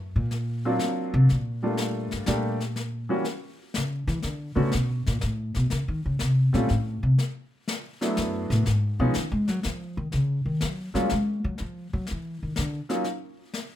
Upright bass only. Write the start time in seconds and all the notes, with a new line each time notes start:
Already playing: F#2
0.16 A#2
1.14 C3
1.32 A#2
2.13 G2
2.28 A#2
3.76 C#3
4.07 E3
4.24 D3
4.56 C#3
4.74 B2
5.07 A#2
5.23 A2
5.56 B2
5.72 C#3
5.88 D#3
6.06 C#3
6.21 C3
6.54 A#2
6.70 A2
7.03 C3
8.18 F#2
8.50 A2
8.67 G#2
8.99 B2
9.16 D#3
9.32 G#3
9.48 F#3
9.65 F3
9.97 D#3
10.13 C#3
10.46 D#3
10.63 F#3
10.95 G3
11.12 G#3
11.44 F#3
11.60 F3
11.93 F#3
12.11 E3
12.43 D#3
12.58 D3